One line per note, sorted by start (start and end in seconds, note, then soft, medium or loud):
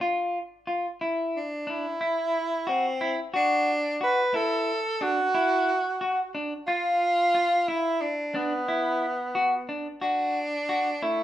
0.01 0.38 F4 medium
0.67 0.86 F4 medium
1.01 1.38 E4 medium
1.36 1.71 D4 medium
1.67 1.86 D4 medium
1.67 2.70 E4 medium
2.01 2.38 E4 medium
2.67 3.18 C4 medium
2.67 2.86 F#4 medium
3.01 3.19 E4 medium
3.34 3.98 D4 loud
3.34 3.71 F#4 medium
4.01 4.19 F#4 medium
4.01 4.37 B4 loud
4.34 4.71 E4 medium
4.34 5.04 A4 loud
5.01 5.19 D4 medium
5.01 6.35 F#4 medium
5.35 5.71 E4 medium
6.01 6.19 F#4 medium
6.35 6.53 D4 medium
6.67 7.69 F4 loud
6.67 7.05 F4 medium
7.35 7.53 F4 medium
7.68 8.02 E4 loud
7.68 8.05 E4 medium
8.01 8.37 D4 medium
8.34 9.69 B3 medium
8.34 8.53 D4 medium
8.68 9.05 E4 medium
9.35 9.53 F#4 medium
9.69 9.87 D4 medium
10.01 11.04 D4 loud
10.01 10.38 F#4 medium
10.69 10.87 F#4 medium
11.02 11.23 A3 medium
11.02 11.23 E4 medium